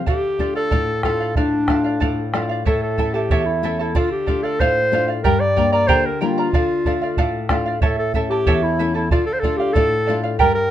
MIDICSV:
0, 0, Header, 1, 5, 480
1, 0, Start_track
1, 0, Key_signature, -1, "minor"
1, 0, Tempo, 645856
1, 47, Time_signature, 2, 2, 24, 8
1, 7957, End_track
2, 0, Start_track
2, 0, Title_t, "Charango"
2, 0, Program_c, 0, 24
2, 47, Note_on_c, 0, 69, 69
2, 50, Note_on_c, 0, 74, 58
2, 56, Note_on_c, 0, 77, 74
2, 285, Note_off_c, 0, 69, 0
2, 290, Note_off_c, 0, 74, 0
2, 293, Note_off_c, 0, 77, 0
2, 294, Note_on_c, 0, 69, 47
2, 298, Note_on_c, 0, 74, 49
2, 305, Note_on_c, 0, 77, 56
2, 402, Note_off_c, 0, 77, 0
2, 411, Note_off_c, 0, 74, 0
2, 411, Note_on_c, 0, 77, 52
2, 412, Note_off_c, 0, 69, 0
2, 420, Note_on_c, 0, 74, 40
2, 523, Note_off_c, 0, 74, 0
2, 525, Note_off_c, 0, 77, 0
2, 527, Note_on_c, 0, 69, 69
2, 532, Note_on_c, 0, 74, 74
2, 534, Note_on_c, 0, 77, 77
2, 762, Note_off_c, 0, 69, 0
2, 768, Note_off_c, 0, 74, 0
2, 771, Note_on_c, 0, 69, 50
2, 773, Note_off_c, 0, 77, 0
2, 777, Note_on_c, 0, 74, 53
2, 783, Note_on_c, 0, 77, 61
2, 885, Note_off_c, 0, 77, 0
2, 891, Note_off_c, 0, 69, 0
2, 894, Note_off_c, 0, 74, 0
2, 894, Note_on_c, 0, 77, 50
2, 904, Note_on_c, 0, 74, 37
2, 1008, Note_off_c, 0, 74, 0
2, 1009, Note_off_c, 0, 77, 0
2, 1014, Note_on_c, 0, 69, 58
2, 1017, Note_on_c, 0, 74, 64
2, 1018, Note_on_c, 0, 77, 70
2, 1241, Note_off_c, 0, 69, 0
2, 1249, Note_off_c, 0, 74, 0
2, 1250, Note_on_c, 0, 69, 51
2, 1252, Note_off_c, 0, 77, 0
2, 1258, Note_on_c, 0, 74, 52
2, 1261, Note_on_c, 0, 77, 63
2, 1361, Note_off_c, 0, 77, 0
2, 1369, Note_on_c, 0, 77, 42
2, 1372, Note_off_c, 0, 69, 0
2, 1372, Note_off_c, 0, 74, 0
2, 1381, Note_on_c, 0, 74, 40
2, 1484, Note_off_c, 0, 74, 0
2, 1488, Note_on_c, 0, 69, 76
2, 1489, Note_off_c, 0, 77, 0
2, 1493, Note_on_c, 0, 74, 73
2, 1498, Note_on_c, 0, 77, 79
2, 1726, Note_off_c, 0, 69, 0
2, 1734, Note_off_c, 0, 74, 0
2, 1735, Note_on_c, 0, 69, 54
2, 1736, Note_off_c, 0, 77, 0
2, 1742, Note_on_c, 0, 74, 60
2, 1747, Note_on_c, 0, 77, 63
2, 1843, Note_off_c, 0, 77, 0
2, 1852, Note_on_c, 0, 77, 58
2, 1855, Note_off_c, 0, 69, 0
2, 1858, Note_off_c, 0, 74, 0
2, 1866, Note_on_c, 0, 74, 47
2, 1973, Note_off_c, 0, 77, 0
2, 1973, Note_on_c, 0, 73, 64
2, 1977, Note_on_c, 0, 64, 70
2, 1978, Note_on_c, 0, 76, 62
2, 1980, Note_off_c, 0, 74, 0
2, 1982, Note_on_c, 0, 81, 64
2, 1983, Note_on_c, 0, 69, 69
2, 2204, Note_off_c, 0, 76, 0
2, 2210, Note_off_c, 0, 64, 0
2, 2211, Note_off_c, 0, 69, 0
2, 2213, Note_on_c, 0, 76, 54
2, 2214, Note_off_c, 0, 73, 0
2, 2216, Note_off_c, 0, 81, 0
2, 2219, Note_on_c, 0, 64, 56
2, 2220, Note_on_c, 0, 69, 62
2, 2225, Note_on_c, 0, 81, 65
2, 2325, Note_off_c, 0, 81, 0
2, 2331, Note_off_c, 0, 69, 0
2, 2334, Note_off_c, 0, 76, 0
2, 2334, Note_on_c, 0, 81, 56
2, 2335, Note_off_c, 0, 64, 0
2, 2340, Note_on_c, 0, 69, 44
2, 2344, Note_on_c, 0, 64, 42
2, 2451, Note_off_c, 0, 64, 0
2, 2454, Note_off_c, 0, 81, 0
2, 2457, Note_off_c, 0, 69, 0
2, 2459, Note_on_c, 0, 73, 72
2, 2460, Note_on_c, 0, 64, 82
2, 2460, Note_on_c, 0, 76, 79
2, 2464, Note_on_c, 0, 81, 78
2, 2465, Note_on_c, 0, 69, 77
2, 2695, Note_off_c, 0, 76, 0
2, 2697, Note_off_c, 0, 73, 0
2, 2698, Note_off_c, 0, 64, 0
2, 2700, Note_off_c, 0, 69, 0
2, 2700, Note_off_c, 0, 81, 0
2, 2704, Note_on_c, 0, 76, 54
2, 2708, Note_on_c, 0, 64, 60
2, 2709, Note_on_c, 0, 69, 64
2, 2710, Note_on_c, 0, 81, 60
2, 2811, Note_off_c, 0, 81, 0
2, 2817, Note_off_c, 0, 69, 0
2, 2820, Note_off_c, 0, 76, 0
2, 2820, Note_on_c, 0, 81, 49
2, 2822, Note_off_c, 0, 64, 0
2, 2826, Note_on_c, 0, 69, 49
2, 2830, Note_on_c, 0, 64, 43
2, 2928, Note_off_c, 0, 69, 0
2, 2934, Note_off_c, 0, 64, 0
2, 2937, Note_on_c, 0, 69, 71
2, 2938, Note_off_c, 0, 81, 0
2, 2941, Note_on_c, 0, 74, 77
2, 2944, Note_on_c, 0, 77, 70
2, 3161, Note_off_c, 0, 69, 0
2, 3167, Note_off_c, 0, 74, 0
2, 3170, Note_on_c, 0, 69, 52
2, 3172, Note_off_c, 0, 77, 0
2, 3176, Note_on_c, 0, 74, 62
2, 3181, Note_on_c, 0, 77, 61
2, 3287, Note_off_c, 0, 77, 0
2, 3293, Note_off_c, 0, 69, 0
2, 3295, Note_off_c, 0, 74, 0
2, 3296, Note_on_c, 0, 77, 47
2, 3307, Note_on_c, 0, 74, 49
2, 3414, Note_off_c, 0, 74, 0
2, 3416, Note_off_c, 0, 77, 0
2, 3421, Note_on_c, 0, 69, 77
2, 3422, Note_on_c, 0, 74, 82
2, 3427, Note_on_c, 0, 77, 88
2, 3655, Note_off_c, 0, 69, 0
2, 3659, Note_off_c, 0, 74, 0
2, 3661, Note_off_c, 0, 77, 0
2, 3664, Note_on_c, 0, 69, 53
2, 3667, Note_on_c, 0, 74, 57
2, 3672, Note_on_c, 0, 77, 62
2, 3766, Note_off_c, 0, 77, 0
2, 3775, Note_on_c, 0, 77, 54
2, 3778, Note_off_c, 0, 74, 0
2, 3780, Note_off_c, 0, 69, 0
2, 3787, Note_on_c, 0, 74, 45
2, 3888, Note_off_c, 0, 74, 0
2, 3894, Note_off_c, 0, 77, 0
2, 3896, Note_on_c, 0, 67, 64
2, 3897, Note_on_c, 0, 74, 77
2, 3897, Note_on_c, 0, 79, 64
2, 3898, Note_on_c, 0, 70, 64
2, 3900, Note_on_c, 0, 82, 74
2, 4125, Note_off_c, 0, 79, 0
2, 4127, Note_off_c, 0, 70, 0
2, 4133, Note_off_c, 0, 74, 0
2, 4134, Note_on_c, 0, 79, 57
2, 4135, Note_off_c, 0, 67, 0
2, 4135, Note_off_c, 0, 82, 0
2, 4136, Note_on_c, 0, 70, 57
2, 4142, Note_on_c, 0, 74, 64
2, 4144, Note_on_c, 0, 82, 64
2, 4245, Note_off_c, 0, 82, 0
2, 4250, Note_off_c, 0, 74, 0
2, 4254, Note_off_c, 0, 79, 0
2, 4254, Note_on_c, 0, 82, 51
2, 4255, Note_off_c, 0, 70, 0
2, 4259, Note_on_c, 0, 74, 44
2, 4266, Note_on_c, 0, 70, 43
2, 4366, Note_off_c, 0, 74, 0
2, 4367, Note_off_c, 0, 70, 0
2, 4368, Note_off_c, 0, 82, 0
2, 4371, Note_on_c, 0, 67, 78
2, 4374, Note_on_c, 0, 79, 77
2, 4375, Note_on_c, 0, 74, 88
2, 4376, Note_on_c, 0, 70, 92
2, 4377, Note_on_c, 0, 82, 88
2, 4604, Note_off_c, 0, 79, 0
2, 4608, Note_off_c, 0, 70, 0
2, 4611, Note_off_c, 0, 74, 0
2, 4612, Note_off_c, 0, 67, 0
2, 4613, Note_off_c, 0, 82, 0
2, 4613, Note_on_c, 0, 79, 58
2, 4617, Note_on_c, 0, 70, 52
2, 4620, Note_on_c, 0, 74, 54
2, 4622, Note_on_c, 0, 82, 58
2, 4731, Note_off_c, 0, 82, 0
2, 4733, Note_off_c, 0, 79, 0
2, 4735, Note_off_c, 0, 70, 0
2, 4737, Note_off_c, 0, 74, 0
2, 4740, Note_on_c, 0, 82, 59
2, 4745, Note_on_c, 0, 74, 45
2, 4752, Note_on_c, 0, 70, 44
2, 4854, Note_off_c, 0, 74, 0
2, 4855, Note_off_c, 0, 70, 0
2, 4857, Note_off_c, 0, 82, 0
2, 4858, Note_on_c, 0, 69, 70
2, 4862, Note_on_c, 0, 74, 70
2, 4865, Note_on_c, 0, 77, 75
2, 5088, Note_off_c, 0, 69, 0
2, 5092, Note_off_c, 0, 74, 0
2, 5097, Note_on_c, 0, 69, 57
2, 5099, Note_off_c, 0, 77, 0
2, 5101, Note_on_c, 0, 74, 50
2, 5107, Note_on_c, 0, 77, 64
2, 5206, Note_off_c, 0, 77, 0
2, 5215, Note_off_c, 0, 69, 0
2, 5215, Note_on_c, 0, 77, 55
2, 5217, Note_off_c, 0, 74, 0
2, 5224, Note_on_c, 0, 74, 47
2, 5331, Note_off_c, 0, 74, 0
2, 5332, Note_off_c, 0, 77, 0
2, 5334, Note_on_c, 0, 69, 86
2, 5340, Note_on_c, 0, 74, 88
2, 5341, Note_on_c, 0, 77, 86
2, 5558, Note_off_c, 0, 69, 0
2, 5565, Note_off_c, 0, 74, 0
2, 5567, Note_on_c, 0, 69, 52
2, 5571, Note_off_c, 0, 77, 0
2, 5574, Note_on_c, 0, 74, 59
2, 5580, Note_on_c, 0, 77, 72
2, 5681, Note_off_c, 0, 77, 0
2, 5689, Note_off_c, 0, 69, 0
2, 5690, Note_on_c, 0, 77, 53
2, 5693, Note_off_c, 0, 74, 0
2, 5703, Note_on_c, 0, 74, 45
2, 5807, Note_off_c, 0, 74, 0
2, 5808, Note_off_c, 0, 77, 0
2, 5810, Note_on_c, 0, 73, 65
2, 5811, Note_on_c, 0, 76, 70
2, 5814, Note_on_c, 0, 64, 72
2, 5816, Note_on_c, 0, 69, 66
2, 5818, Note_on_c, 0, 81, 72
2, 6047, Note_off_c, 0, 76, 0
2, 6050, Note_off_c, 0, 73, 0
2, 6051, Note_off_c, 0, 64, 0
2, 6053, Note_off_c, 0, 69, 0
2, 6054, Note_off_c, 0, 81, 0
2, 6056, Note_on_c, 0, 76, 54
2, 6059, Note_on_c, 0, 64, 53
2, 6062, Note_on_c, 0, 69, 57
2, 6065, Note_on_c, 0, 81, 64
2, 6165, Note_off_c, 0, 81, 0
2, 6170, Note_off_c, 0, 69, 0
2, 6173, Note_off_c, 0, 76, 0
2, 6173, Note_on_c, 0, 81, 53
2, 6175, Note_off_c, 0, 64, 0
2, 6179, Note_on_c, 0, 69, 51
2, 6183, Note_on_c, 0, 64, 43
2, 6288, Note_off_c, 0, 64, 0
2, 6289, Note_off_c, 0, 69, 0
2, 6292, Note_off_c, 0, 81, 0
2, 6292, Note_on_c, 0, 73, 84
2, 6296, Note_on_c, 0, 64, 83
2, 6297, Note_on_c, 0, 76, 71
2, 6298, Note_on_c, 0, 69, 84
2, 6303, Note_on_c, 0, 81, 77
2, 6525, Note_off_c, 0, 76, 0
2, 6529, Note_off_c, 0, 64, 0
2, 6530, Note_off_c, 0, 73, 0
2, 6531, Note_off_c, 0, 69, 0
2, 6533, Note_off_c, 0, 81, 0
2, 6534, Note_on_c, 0, 76, 57
2, 6538, Note_on_c, 0, 64, 54
2, 6540, Note_on_c, 0, 69, 59
2, 6541, Note_on_c, 0, 81, 65
2, 6637, Note_off_c, 0, 81, 0
2, 6644, Note_off_c, 0, 69, 0
2, 6646, Note_on_c, 0, 81, 52
2, 6649, Note_off_c, 0, 64, 0
2, 6651, Note_off_c, 0, 76, 0
2, 6653, Note_on_c, 0, 69, 50
2, 6658, Note_on_c, 0, 64, 46
2, 6763, Note_off_c, 0, 69, 0
2, 6767, Note_off_c, 0, 81, 0
2, 6769, Note_off_c, 0, 64, 0
2, 6772, Note_on_c, 0, 69, 61
2, 6777, Note_on_c, 0, 74, 70
2, 6780, Note_on_c, 0, 77, 75
2, 7000, Note_off_c, 0, 69, 0
2, 7005, Note_off_c, 0, 74, 0
2, 7008, Note_on_c, 0, 69, 51
2, 7011, Note_off_c, 0, 77, 0
2, 7014, Note_on_c, 0, 74, 56
2, 7020, Note_on_c, 0, 77, 58
2, 7123, Note_off_c, 0, 77, 0
2, 7128, Note_off_c, 0, 69, 0
2, 7130, Note_off_c, 0, 74, 0
2, 7132, Note_on_c, 0, 77, 53
2, 7143, Note_on_c, 0, 74, 41
2, 7245, Note_off_c, 0, 74, 0
2, 7248, Note_on_c, 0, 69, 72
2, 7249, Note_off_c, 0, 77, 0
2, 7254, Note_on_c, 0, 74, 76
2, 7258, Note_on_c, 0, 77, 79
2, 7471, Note_off_c, 0, 69, 0
2, 7477, Note_off_c, 0, 74, 0
2, 7480, Note_on_c, 0, 69, 49
2, 7484, Note_off_c, 0, 77, 0
2, 7486, Note_on_c, 0, 74, 57
2, 7493, Note_on_c, 0, 77, 66
2, 7598, Note_off_c, 0, 77, 0
2, 7602, Note_off_c, 0, 69, 0
2, 7605, Note_off_c, 0, 74, 0
2, 7606, Note_on_c, 0, 77, 58
2, 7616, Note_on_c, 0, 74, 45
2, 7717, Note_off_c, 0, 74, 0
2, 7720, Note_off_c, 0, 77, 0
2, 7722, Note_on_c, 0, 67, 70
2, 7722, Note_on_c, 0, 70, 68
2, 7723, Note_on_c, 0, 79, 78
2, 7726, Note_on_c, 0, 74, 69
2, 7729, Note_on_c, 0, 82, 81
2, 7948, Note_off_c, 0, 79, 0
2, 7953, Note_off_c, 0, 70, 0
2, 7956, Note_off_c, 0, 74, 0
2, 7957, Note_off_c, 0, 67, 0
2, 7957, Note_off_c, 0, 82, 0
2, 7957, End_track
3, 0, Start_track
3, 0, Title_t, "Clarinet"
3, 0, Program_c, 1, 71
3, 60, Note_on_c, 1, 67, 89
3, 391, Note_off_c, 1, 67, 0
3, 414, Note_on_c, 1, 69, 93
3, 748, Note_off_c, 1, 69, 0
3, 773, Note_on_c, 1, 69, 89
3, 996, Note_off_c, 1, 69, 0
3, 1017, Note_on_c, 1, 62, 73
3, 1707, Note_off_c, 1, 62, 0
3, 1977, Note_on_c, 1, 69, 78
3, 2088, Note_off_c, 1, 69, 0
3, 2101, Note_on_c, 1, 69, 71
3, 2334, Note_on_c, 1, 67, 80
3, 2346, Note_off_c, 1, 69, 0
3, 2569, Note_on_c, 1, 64, 69
3, 2580, Note_off_c, 1, 67, 0
3, 2812, Note_off_c, 1, 64, 0
3, 2825, Note_on_c, 1, 64, 67
3, 2937, Note_on_c, 1, 65, 78
3, 2949, Note_off_c, 1, 64, 0
3, 3056, Note_off_c, 1, 65, 0
3, 3060, Note_on_c, 1, 67, 82
3, 3293, Note_on_c, 1, 69, 92
3, 3305, Note_off_c, 1, 67, 0
3, 3419, Note_on_c, 1, 72, 102
3, 3430, Note_off_c, 1, 69, 0
3, 3777, Note_off_c, 1, 72, 0
3, 3888, Note_on_c, 1, 70, 91
3, 4014, Note_on_c, 1, 74, 102
3, 4025, Note_off_c, 1, 70, 0
3, 4249, Note_off_c, 1, 74, 0
3, 4253, Note_on_c, 1, 74, 98
3, 4365, Note_on_c, 1, 72, 89
3, 4376, Note_off_c, 1, 74, 0
3, 4501, Note_on_c, 1, 70, 76
3, 4512, Note_off_c, 1, 72, 0
3, 4617, Note_off_c, 1, 70, 0
3, 4624, Note_on_c, 1, 65, 78
3, 5547, Note_off_c, 1, 65, 0
3, 5818, Note_on_c, 1, 69, 77
3, 5926, Note_off_c, 1, 69, 0
3, 5934, Note_on_c, 1, 69, 79
3, 6041, Note_off_c, 1, 69, 0
3, 6168, Note_on_c, 1, 67, 85
3, 6413, Note_on_c, 1, 64, 75
3, 6425, Note_off_c, 1, 67, 0
3, 6651, Note_off_c, 1, 64, 0
3, 6658, Note_on_c, 1, 64, 69
3, 6765, Note_off_c, 1, 64, 0
3, 6774, Note_on_c, 1, 65, 80
3, 6879, Note_off_c, 1, 65, 0
3, 6884, Note_on_c, 1, 69, 82
3, 6936, Note_on_c, 1, 72, 77
3, 6947, Note_off_c, 1, 69, 0
3, 6984, Note_on_c, 1, 69, 80
3, 6995, Note_off_c, 1, 72, 0
3, 7112, Note_on_c, 1, 67, 89
3, 7123, Note_off_c, 1, 69, 0
3, 7231, Note_on_c, 1, 69, 104
3, 7242, Note_off_c, 1, 67, 0
3, 7597, Note_off_c, 1, 69, 0
3, 7726, Note_on_c, 1, 70, 98
3, 7832, Note_off_c, 1, 70, 0
3, 7837, Note_on_c, 1, 70, 96
3, 7957, Note_off_c, 1, 70, 0
3, 7957, End_track
4, 0, Start_track
4, 0, Title_t, "Nylon-string guitar"
4, 0, Program_c, 2, 24
4, 54, Note_on_c, 2, 50, 57
4, 291, Note_on_c, 2, 57, 42
4, 295, Note_on_c, 2, 62, 37
4, 296, Note_on_c, 2, 65, 44
4, 519, Note_off_c, 2, 50, 0
4, 538, Note_on_c, 2, 45, 64
4, 676, Note_off_c, 2, 57, 0
4, 677, Note_off_c, 2, 65, 0
4, 678, Note_off_c, 2, 62, 0
4, 778, Note_on_c, 2, 57, 44
4, 780, Note_on_c, 2, 62, 39
4, 781, Note_on_c, 2, 65, 52
4, 1002, Note_off_c, 2, 45, 0
4, 1023, Note_on_c, 2, 45, 57
4, 1161, Note_off_c, 2, 57, 0
4, 1161, Note_off_c, 2, 62, 0
4, 1163, Note_off_c, 2, 65, 0
4, 1259, Note_on_c, 2, 57, 40
4, 1262, Note_on_c, 2, 62, 32
4, 1263, Note_on_c, 2, 65, 46
4, 1484, Note_off_c, 2, 45, 0
4, 1499, Note_on_c, 2, 45, 55
4, 1641, Note_off_c, 2, 57, 0
4, 1644, Note_off_c, 2, 62, 0
4, 1644, Note_off_c, 2, 65, 0
4, 1740, Note_on_c, 2, 57, 45
4, 1744, Note_on_c, 2, 62, 38
4, 1748, Note_on_c, 2, 65, 44
4, 1930, Note_off_c, 2, 57, 0
4, 1932, Note_off_c, 2, 62, 0
4, 1935, Note_off_c, 2, 65, 0
4, 1963, Note_off_c, 2, 45, 0
4, 1982, Note_on_c, 2, 45, 58
4, 2216, Note_on_c, 2, 57, 43
4, 2219, Note_on_c, 2, 61, 39
4, 2223, Note_on_c, 2, 64, 45
4, 2445, Note_off_c, 2, 45, 0
4, 2459, Note_on_c, 2, 40, 60
4, 2600, Note_off_c, 2, 57, 0
4, 2602, Note_off_c, 2, 61, 0
4, 2604, Note_off_c, 2, 64, 0
4, 2698, Note_on_c, 2, 57, 53
4, 2702, Note_on_c, 2, 61, 46
4, 2704, Note_on_c, 2, 64, 53
4, 2889, Note_off_c, 2, 57, 0
4, 2891, Note_off_c, 2, 61, 0
4, 2893, Note_off_c, 2, 64, 0
4, 2923, Note_off_c, 2, 40, 0
4, 2934, Note_on_c, 2, 50, 62
4, 3182, Note_on_c, 2, 57, 41
4, 3185, Note_on_c, 2, 62, 35
4, 3189, Note_on_c, 2, 65, 43
4, 3400, Note_off_c, 2, 50, 0
4, 3425, Note_on_c, 2, 45, 62
4, 3563, Note_off_c, 2, 57, 0
4, 3565, Note_off_c, 2, 62, 0
4, 3567, Note_off_c, 2, 65, 0
4, 3656, Note_on_c, 2, 57, 50
4, 3661, Note_on_c, 2, 62, 45
4, 3663, Note_on_c, 2, 65, 57
4, 3848, Note_off_c, 2, 57, 0
4, 3849, Note_off_c, 2, 62, 0
4, 3852, Note_off_c, 2, 65, 0
4, 3886, Note_off_c, 2, 45, 0
4, 3905, Note_on_c, 2, 43, 64
4, 4137, Note_on_c, 2, 55, 43
4, 4143, Note_on_c, 2, 58, 39
4, 4146, Note_on_c, 2, 62, 45
4, 4365, Note_off_c, 2, 43, 0
4, 4383, Note_on_c, 2, 50, 63
4, 4520, Note_off_c, 2, 55, 0
4, 4522, Note_off_c, 2, 58, 0
4, 4525, Note_off_c, 2, 62, 0
4, 4620, Note_on_c, 2, 55, 51
4, 4624, Note_on_c, 2, 58, 46
4, 4624, Note_on_c, 2, 62, 52
4, 4810, Note_off_c, 2, 55, 0
4, 4811, Note_off_c, 2, 58, 0
4, 4812, Note_off_c, 2, 62, 0
4, 4844, Note_off_c, 2, 50, 0
4, 4862, Note_on_c, 2, 50, 57
4, 5099, Note_on_c, 2, 57, 42
4, 5104, Note_on_c, 2, 62, 38
4, 5105, Note_on_c, 2, 65, 46
4, 5323, Note_off_c, 2, 50, 0
4, 5338, Note_on_c, 2, 45, 63
4, 5480, Note_off_c, 2, 57, 0
4, 5481, Note_off_c, 2, 62, 0
4, 5483, Note_off_c, 2, 65, 0
4, 5571, Note_on_c, 2, 57, 47
4, 5574, Note_on_c, 2, 62, 42
4, 5577, Note_on_c, 2, 65, 53
4, 5764, Note_off_c, 2, 57, 0
4, 5764, Note_off_c, 2, 62, 0
4, 5766, Note_off_c, 2, 65, 0
4, 5799, Note_off_c, 2, 45, 0
4, 5812, Note_on_c, 2, 45, 55
4, 6048, Note_on_c, 2, 57, 40
4, 6055, Note_on_c, 2, 61, 39
4, 6060, Note_on_c, 2, 64, 46
4, 6276, Note_off_c, 2, 45, 0
4, 6295, Note_on_c, 2, 40, 64
4, 6432, Note_off_c, 2, 57, 0
4, 6436, Note_off_c, 2, 61, 0
4, 6439, Note_off_c, 2, 64, 0
4, 6535, Note_on_c, 2, 57, 45
4, 6541, Note_on_c, 2, 61, 42
4, 6546, Note_on_c, 2, 64, 56
4, 6724, Note_off_c, 2, 57, 0
4, 6728, Note_off_c, 2, 61, 0
4, 6729, Note_off_c, 2, 64, 0
4, 6757, Note_off_c, 2, 40, 0
4, 6779, Note_on_c, 2, 50, 58
4, 7013, Note_on_c, 2, 57, 39
4, 7016, Note_on_c, 2, 62, 42
4, 7018, Note_on_c, 2, 65, 47
4, 7238, Note_off_c, 2, 50, 0
4, 7252, Note_on_c, 2, 45, 64
4, 7394, Note_off_c, 2, 57, 0
4, 7394, Note_off_c, 2, 62, 0
4, 7396, Note_off_c, 2, 65, 0
4, 7499, Note_on_c, 2, 57, 51
4, 7503, Note_on_c, 2, 62, 45
4, 7505, Note_on_c, 2, 65, 53
4, 7685, Note_off_c, 2, 57, 0
4, 7687, Note_off_c, 2, 62, 0
4, 7689, Note_off_c, 2, 65, 0
4, 7713, Note_off_c, 2, 45, 0
4, 7741, Note_on_c, 2, 43, 61
4, 7957, Note_off_c, 2, 43, 0
4, 7957, End_track
5, 0, Start_track
5, 0, Title_t, "Bombo"
5, 50, Note_on_c, 9, 43, 64
5, 124, Note_off_c, 9, 43, 0
5, 289, Note_on_c, 9, 43, 45
5, 363, Note_off_c, 9, 43, 0
5, 529, Note_on_c, 9, 43, 64
5, 603, Note_off_c, 9, 43, 0
5, 768, Note_on_c, 9, 37, 46
5, 768, Note_on_c, 9, 43, 44
5, 842, Note_off_c, 9, 37, 0
5, 842, Note_off_c, 9, 43, 0
5, 1006, Note_on_c, 9, 43, 65
5, 1080, Note_off_c, 9, 43, 0
5, 1248, Note_on_c, 9, 37, 44
5, 1248, Note_on_c, 9, 43, 53
5, 1322, Note_off_c, 9, 37, 0
5, 1322, Note_off_c, 9, 43, 0
5, 1494, Note_on_c, 9, 43, 54
5, 1568, Note_off_c, 9, 43, 0
5, 1736, Note_on_c, 9, 37, 45
5, 1811, Note_off_c, 9, 37, 0
5, 1977, Note_on_c, 9, 43, 63
5, 2051, Note_off_c, 9, 43, 0
5, 2214, Note_on_c, 9, 43, 50
5, 2288, Note_off_c, 9, 43, 0
5, 2454, Note_on_c, 9, 43, 70
5, 2528, Note_off_c, 9, 43, 0
5, 2935, Note_on_c, 9, 43, 64
5, 3009, Note_off_c, 9, 43, 0
5, 3175, Note_on_c, 9, 43, 56
5, 3249, Note_off_c, 9, 43, 0
5, 3417, Note_on_c, 9, 43, 60
5, 3491, Note_off_c, 9, 43, 0
5, 3897, Note_on_c, 9, 43, 67
5, 3972, Note_off_c, 9, 43, 0
5, 4142, Note_on_c, 9, 43, 51
5, 4217, Note_off_c, 9, 43, 0
5, 4374, Note_on_c, 9, 43, 64
5, 4449, Note_off_c, 9, 43, 0
5, 4855, Note_on_c, 9, 43, 70
5, 4929, Note_off_c, 9, 43, 0
5, 5093, Note_on_c, 9, 43, 53
5, 5167, Note_off_c, 9, 43, 0
5, 5329, Note_on_c, 9, 43, 65
5, 5404, Note_off_c, 9, 43, 0
5, 5568, Note_on_c, 9, 37, 49
5, 5568, Note_on_c, 9, 43, 55
5, 5643, Note_off_c, 9, 37, 0
5, 5643, Note_off_c, 9, 43, 0
5, 5807, Note_on_c, 9, 43, 73
5, 5881, Note_off_c, 9, 43, 0
5, 6047, Note_on_c, 9, 43, 56
5, 6121, Note_off_c, 9, 43, 0
5, 6290, Note_on_c, 9, 43, 69
5, 6365, Note_off_c, 9, 43, 0
5, 6768, Note_on_c, 9, 43, 73
5, 6842, Note_off_c, 9, 43, 0
5, 7008, Note_on_c, 9, 43, 55
5, 7082, Note_off_c, 9, 43, 0
5, 7249, Note_on_c, 9, 43, 69
5, 7323, Note_off_c, 9, 43, 0
5, 7723, Note_on_c, 9, 43, 63
5, 7797, Note_off_c, 9, 43, 0
5, 7957, End_track
0, 0, End_of_file